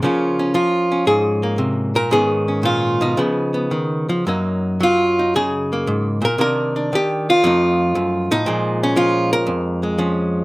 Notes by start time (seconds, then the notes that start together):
0.03 C#3 F3 A#3 C#4 F4
0.39 C#4
0.54 F3 F4
0.92 C#4
1.07 G#2 G#4
1.43 A#3
1.58 C3
1.95 A#2 A#4
2.11 G#2 D#3 B3 C#4 G#4
2.48 C#4
2.63 A#2 F4
3.01 B2 D#4
3.17 C#3 F3 B3
3.54 B3
3.71 D#3
4.09 F3
4.27 F#2 F#3 A#3 D#4
4.80 F#3 F4
5.19 D#4
5.36 C#3 G#4
5.73 A#3
5.87 G#2
6.22 A#2 A#4
6.38 C3 D#3 A#3 D4 A#4
6.76 D4
6.93 D#3 G4
7.30 F4
7.44 F2 F3 A3 D#4
7.95 F#2
8.31 A2 D#4
8.46 A#2 F3 G#3
8.83 C#4
8.96 F3 F4
9.33 A#4
9.47 F2
9.83 G#3
9.98 F3 C#4